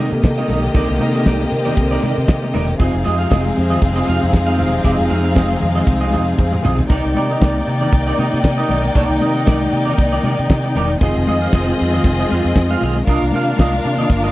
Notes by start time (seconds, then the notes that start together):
Already playing: C3 D3 D#3 A#3 G4 D#5
0.00 A#4 D#5
0.12 C3, muted clean electric guitar stroke, closed hi-hat
0.23 C3, muted clean electric guitar stroke, kick, snare, muted conga
0.38 D#4 A#4 D#5, closed hi-hat, muted conga
0.48 B1 D#4 A#4 D#5, open hi-hat, high conga, low conga
0.63 muted clean electric guitar stroke, closed hi-hat
0.74 C2 C4 D#4 A#4 D5, kick, closed hi-hat, muted conga
0.89 C2, muted clean electric guitar stroke, closed hi-hat, muted conga
0.98 C3 D#4 A#4 D#5, closed hi-hat, high conga
1.14 D#4 A#4 D#5, closed hi-hat
1.26 C2 D#4 A#4 D5, kick, snare, muted conga, high conga
1.40 muted clean electric guitar stroke, snare, closed hi-hat, muted conga, high conga
1.51 C3, muted clean electric guitar stroke, open hi-hat
1.65 D#4 A#4 D5, closed hi-hat, low conga
1.77 C2, muted clean electric guitar stroke, kick, closed hi-hat, muted conga
1.91 D#4 A#4 D5, closed hi-hat, muted conga
2.02 C3 D#4 A#4 D5, closed hi-hat, high conga
2.16 C3, muted clean electric guitar stroke, closed hi-hat
2.28 C3, muted clean electric guitar stroke, kick, snare, muted conga
2.43 muted clean electric guitar stroke, closed hi-hat, muted conga
2.54 E1 D#4 A#4 D5, open hi-hat, high conga, low conga
2.68 muted clean electric guitar stroke, closed hi-hat
2.79 F1 F3 G#3 C4 D#4 F4 G#4 D#5 F5, kick, closed hi-hat, muted conga
2.94 F1, muted clean electric guitar stroke, closed hi-hat
3.04 F2 F4 G#4 D#5, closed hi-hat, high conga
3.18 F4 G#4 F5, closed hi-hat
3.30 F1 F4 G#4 D#5, kick, snare, muted conga, high conga
3.44 muted clean electric guitar stroke, snare, closed hi-hat, muted conga, high conga
3.56 F2, muted clean electric guitar stroke, open hi-hat
3.70 F4 G#4 D#5, closed hi-hat, low conga
3.82 F1, kick, closed hi-hat, muted conga
3.96 F4 G#4 D#5, closed hi-hat, muted conga
4.06 F2 F4 G#4 F5, closed hi-hat, high conga
4.22 F2, muted clean electric guitar stroke, closed hi-hat
4.32 F2, muted clean electric guitar stroke, kick, snare, muted conga
4.47 F4 G#4 F5, closed hi-hat, muted conga
4.57 E1 F4 G#4 F5, open hi-hat, high conga, low conga
4.73 muted clean electric guitar stroke, closed hi-hat
4.84 F1 F4 G#4 D#5, kick, closed hi-hat, muted conga
4.98 F1, muted clean electric guitar stroke, closed hi-hat, muted conga
5.10 F2 F4 G#4 F5, closed hi-hat, high conga
5.24 F4 G#4 F5, closed hi-hat
5.34 F1 F4 G#4 D#5, kick, snare, muted conga, high conga
5.49 muted clean electric guitar stroke, snare, closed hi-hat, muted conga, high conga
5.60 F2, muted clean electric guitar stroke, closed hi-hat, low conga
5.75 F4 G#4 D#5, closed hi-hat, low conga
5.87 C2, muted clean electric guitar stroke, kick, closed hi-hat
5.99 F4 G#4 D#5, closed hi-hat, muted conga
6.11 F2 F4 G#4 D#5, closed hi-hat, high conga
6.27 muted clean electric guitar stroke, closed hi-hat
6.37 F2, muted clean electric guitar stroke, kick, high tom, muted conga
6.51 muted clean electric guitar stroke, mid tom, muted conga
6.63 B1 F4 G#4 D#5, mid tom, high conga, low conga
6.79 muted clean electric guitar stroke, floor tom
6.88 C2 D#3 A#3 D#4 A#4 D5 G5, kick, crash, muted conga
7.03 C2, muted clean electric guitar stroke, closed hi-hat, muted conga
7.15 C3 D#4 A#4 D5, closed hi-hat, high conga
7.30 D#4 A#4 D#5, closed hi-hat
7.41 C2 D#4 A#4 D5, kick, snare, muted conga, high conga
7.55 muted clean electric guitar stroke, closed hi-hat, muted conga, high conga
7.67 C3, muted clean electric guitar stroke, open hi-hat
7.81 D#4 A#4 D5, closed hi-hat, low conga
7.93 C2, muted clean electric guitar stroke, kick, closed hi-hat
8.07 D#4 A#4 D5, closed hi-hat
8.17 C3 D#4 A#4 D#5, closed hi-hat, high conga
8.33 C3, muted clean electric guitar stroke, closed hi-hat
8.43 C3, muted clean electric guitar stroke, kick, snare, muted conga
8.57 D#4 A#4 D#5, closed hi-hat, muted conga
8.69 B1 D#4 A#4 D#5, open hi-hat, high conga, low conga
8.84 muted clean electric guitar stroke, closed hi-hat
8.94 C2 D#4 A#4 D5, kick, closed hi-hat, muted conga
9.09 C2, muted clean electric guitar stroke, closed hi-hat
9.20 C3 D#4 A#4 D#5, closed hi-hat, high conga
9.34 D#4 A#4 D#5, closed hi-hat
9.46 C2 D#4 A#4 D5, kick, snare, muted conga, high conga
9.60 muted clean electric guitar stroke, snare, closed hi-hat, muted conga, high conga
9.71 C3, muted clean electric guitar stroke, open hi-hat
9.85 D#4 A#4 D5, closed hi-hat, low conga
9.98 C2, muted clean electric guitar stroke, kick, closed hi-hat, muted conga
10.12 D#4 A#4 D5, closed hi-hat, muted conga
10.23 C3 D#4 A#4 D5, closed hi-hat, high conga
10.39 C3, muted clean electric guitar stroke, closed hi-hat
10.49 C3, muted clean electric guitar stroke, kick, snare, muted conga
10.64 muted clean electric guitar stroke, closed hi-hat, muted conga
10.75 E1 D#4 A#4 D5, open hi-hat, high conga, low conga
10.90 muted clean electric guitar stroke, closed hi-hat
11.00 F1 G#3 C4 F4 G#4 D#5, kick, closed hi-hat, muted conga
11.16 F1, muted clean electric guitar stroke, closed hi-hat, muted conga
11.27 F2 F4 G#4 D#5, closed hi-hat, high conga
11.42 F4 G#4 F5, closed hi-hat
11.53 F1 F4 G#4 D#5, kick, snare, muted conga, high conga
11.67 muted clean electric guitar stroke, snare, closed hi-hat, high conga
11.78 F2, muted clean electric guitar stroke, open hi-hat
11.93 F4 G#4 D#5, closed hi-hat, low conga
12.04 F1, muted clean electric guitar stroke, kick, closed hi-hat, muted conga
12.18 F4 G#4 D#5, closed hi-hat, muted conga
12.29 F2 F4 G#4 F5, closed hi-hat, high conga
12.45 F2, muted clean electric guitar stroke, closed hi-hat
12.55 F2, muted clean electric guitar stroke, kick, snare, muted conga
12.70 F4 G#4 F5, closed hi-hat, muted conga
12.81 B1 F4 G#4 F5, open hi-hat, high conga, low conga
12.96 muted clean electric guitar stroke, closed hi-hat
13.06 C2 A#3 D4 F4 A#4 D#5 F5, kick, closed hi-hat, muted conga
13.21 C2, muted clean electric guitar stroke, closed hi-hat, muted conga
13.32 C3 F4 A#4, closed hi-hat, high conga
13.36 F5
13.48 F4 A#4 F5, closed hi-hat
13.57 C2 F4 A#4 D#5, kick, snare, muted conga, high conga
13.73 muted clean electric guitar stroke, snare, closed hi-hat, muted conga, high conga
13.84 C3, muted clean electric guitar stroke, closed hi-hat
13.97 F4 A#4 D#5, closed hi-hat, low conga
14.10 G1, kick, closed hi-hat
14.24 F4 A#4 D#5, closed hi-hat, muted conga